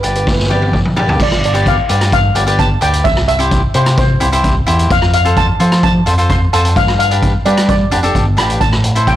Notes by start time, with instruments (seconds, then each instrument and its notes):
0.01 fingered electric bass G1, cavaquinho G4 B4 D5, steel pan B4, closed hi-hat
0.09 steel pan B4
0.15 steel pan B4, closed hi-hat
0.24 steel pan B4, kick, snare
0.33 steel pan B4
0.39 steel pan B4, snare
0.46 cavaquinho G4, steel pan B4
0.51 cavaquinho B4 D5, high tom
0.55 steel pan B4
0.62 high tom
0.73 kick, mid tom
0.85 mid tom
0.96 cavaquinho G4 B4 D5, floor tom
1.09 fingered electric bass D2, floor tom
1.20 fingered electric bass G1, steel pan D5, kick, crash
1.32 cross-stick
1.44 steel pan D5, closed hi-hat
1.54 cavaquinho G4 B4 D5, closed hi-hat
1.66 steel pan F5, kick, closed hi-hat
1.89 fingered electric bass G2, cavaquinho G4 B4 D5, closed hi-hat
2.01 cross-stick, closed hi-hat
2.12 steel pan F5, kick, closed hi-hat
2.35 fingered electric bass G1, cavaquinho G4 B4 D5, closed hi-hat
2.47 cavaquinho G4 B4 D5, closed hi-hat
2.59 steel pan A5, kick, closed hi-hat
2.81 fingered electric bass D2, cavaquinho G4 B4 D5, steel pan G5, closed hi-hat
2.93 closed hi-hat
3.04 fingered electric bass C2, steel pan E5, kick, closed hi-hat
3.17 cross-stick
3.28 steel pan E5, closed hi-hat
3.39 cavaquinho E4 G4 C5, closed hi-hat
3.51 kick, closed hi-hat
3.74 fingered electric bass C3, cavaquinho E4 G4 C5, steel pan C5, closed hi-hat
3.86 cross-stick, closed hi-hat
3.97 steel pan C5, kick, closed hi-hat
4.20 fingered electric bass C2, cavaquinho E4 G4 C5, closed hi-hat
4.32 cavaquinho E4 G4 C5, closed hi-hat
4.44 kick, closed hi-hat
4.67 fingered electric bass E2, cavaquinho E4 G4 C5, closed hi-hat
4.79 closed hi-hat
4.90 fingered electric bass F2, steel pan F5, kick, closed hi-hat
5.02 cross-stick
5.13 steel pan F5, closed hi-hat
5.25 cavaquinho F4 A4 C5, closed hi-hat
5.37 steel pan A5, kick, closed hi-hat
5.60 fingered electric bass F3, cavaquinho F4 A4 C5, closed hi-hat
5.72 cross-stick, closed hi-hat
5.83 steel pan A5, kick, closed hi-hat
6.06 fingered electric bass F2, cavaquinho F4 A4 C5, closed hi-hat
6.18 cavaquinho F4 A4 C5, closed hi-hat
6.30 steel pan C6, kick, closed hi-hat
6.53 fingered electric bass F2, cavaquinho F4 A4 C5, steel pan A5, closed hi-hat
6.65 closed hi-hat
6.76 fingered electric bass G2, steel pan F5, kick, closed hi-hat
6.88 cross-stick
6.99 steel pan F5, closed hi-hat
7.11 cavaquinho D4 G4 B4, closed hi-hat
7.23 kick, closed hi-hat
7.45 fingered electric bass G3, cavaquinho D4 G4 B4, steel pan D5, closed hi-hat
7.57 cross-stick, closed hi-hat
7.69 steel pan D5, kick, closed hi-hat
7.91 fingered electric bass F1, cavaquinho D4 G4 B4, closed hi-hat
8.03 cavaquinho D4 G4 A4, closed hi-hat
8.15 fingered electric bass G1, kick, closed hi-hat
8.37 fingered electric bass A1, cavaquinho D4 G4 B4, steel pan B5, cross-stick, closed hi-hat
8.50 closed hi-hat
8.61 fingered electric bass A2, steel pan A5, kick, closed hi-hat
8.73 cross-stick
8.84 closed hi-hat
8.95 cavaquinho E4 A4 C5, closed hi-hat
9.07 steel pan G5, kick, closed hi-hat